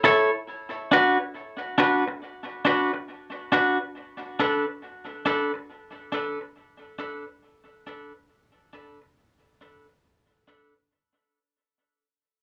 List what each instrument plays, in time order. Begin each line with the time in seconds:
0.04 clean electric guitar E4 A4 C#5
0.92 clean electric guitar D4 F#4 B4
1.78 clean electric guitar D4 F#4 B4
2.08 muted clean electric guitar stroke
2.65 clean electric guitar D4 F#4 B4
2.94 muted clean electric guitar stroke
3.52 clean electric guitar D4 F#4 B4
4.39 clean electric guitar D4 A4 B4
5.26 clean electric guitar D4 A4 B4
5.54 muted clean electric guitar stroke
6.12 clean electric guitar D4 A4 B4
6.41 muted clean electric guitar stroke
6.99 clean electric guitar D4 A4 B4
7.87 clean electric guitar D4 A4 B4
8.73 clean electric guitar D4 A4 B4
9.02 muted clean electric guitar stroke
9.61 clean electric guitar D4 A4 B4
9.89 muted clean electric guitar stroke
10.48 clean electric guitar D4 A4 B4